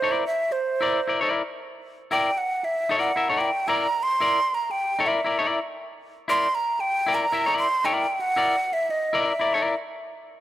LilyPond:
<<
  \new Staff \with { instrumentName = "Flute" } { \time 4/4 \key c \mixolydian \tempo 4 = 115 c''8 e''8 c''4. r4. | g''8 fis''8 \tuplet 3/2 { e''4 fis''8~ } fis''8 g''8 \tuplet 3/2 { bes''4 c'''8~ } | \tuplet 3/2 { c'''4 bes''8 g''4 e''8~ } e''8 r4. | c'''8 bes''8 \tuplet 3/2 { g''4 bes''8~ } bes''8 c'''8 \tuplet 3/2 { g''4 fis''8~ } |
\tuplet 3/2 { fis''4 e''8 ees''4 e''8~ } e''8 r4. | }
  \new Staff \with { instrumentName = "Clean electric guitar" } { \time 4/4 \key c \mixolydian <e' bes' d''>8 r4 <e' bes' d''>16 r16 <e' bes' d''>16 <e' bes' d''>8 r4 r16 | <e' bes' d''>16 r4 r16 <e' bes' d''>8 <e' bes' e''>16 <e' bes' d''>8 r16 <e' bes' d''>16 r8. | <e' bes' d''>16 r4 r16 <e' bes' d''>8 <e' bes' d''>16 <e' bes' d''>8 r4 r16 | <e' bes' d''>16 r4 r16 <e' bes' d''>16 r16 <e' bes' e''>16 <e' bes' d''>8 r16 <e' bes' d''>8 r8 |
<e' bes' d''>16 r4 r16 <e' bes' d''>16 r16 <e' bes' d''>16 <e' bes' d''>8 r4 r16 | }
>>